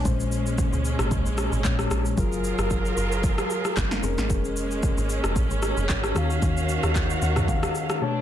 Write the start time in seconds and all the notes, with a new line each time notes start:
0.04 A#1 A#2 G#3 A#3 C#4 C5, kick, shaker
0.20 shaker
0.32 shaker
0.46 shaker
0.58 kick, shaker
0.73 C#2, shaker
0.85 shaker
0.99 G#1, cross-stick, shaker
1.11 C#2, kick, shaker
1.26 A#1, shaker
1.38 cross-stick, shaker
1.52 G#1, shaker
1.64 A#1 A#2 G#3 C#4 C#5, kick, clap, shaker
1.79 cross-stick, shaker
1.91 A#1, cross-stick, shaker
2.05 shaker
2.16 F#1 F#3 F4 G#4 A#4, kick, shaker
2.32 shaker
2.44 shaker
2.59 F#1, cross-stick, shaker
2.70 kick, shaker
2.85 shaker
2.97 F#1, shaker
3.12 shaker
3.24 kick, shaker
3.38 cross-stick, shaker
3.50 shaker
3.65 cross-stick, shaker
3.77 F#1, kick, snare, clap, shaker
3.91 snare, shaker
4.02 F1 G#3 A#3 C4 C#4 G#4 A#4, shaker
4.09 C#4
4.18 G#1, snare, shaker
4.30 F1, kick, shaker
4.45 shaker
4.56 shaker
4.71 shaker
4.83 kick, shaker
4.98 G#1, shaker
5.10 shaker
5.24 F1, cross-stick, shaker
5.36 A#1, kick, shaker
5.51 G#1, shaker
5.63 cross-stick, shaker
5.77 F1, shaker
5.89 G#1, kick, clap, shaker
6.04 cross-stick, shaker
6.15 D#2 D#3 C#4 F#4 F5, cross-stick, shaker
6.30 shaker
6.42 D#2, kick, shaker
6.57 shaker
6.69 shaker
6.83 D#2, cross-stick, shaker
6.95 kick, clap, shaker
7.10 shaker
7.22 D#2 F#5, shaker
7.36 cross-stick, mid tom, shaker
7.48 F5, kick, shaker
7.63 cross-stick, shaker
7.75 shaker
7.90 cross-stick, shaker
8.01 B2 A3 B3 D4 C#5 A5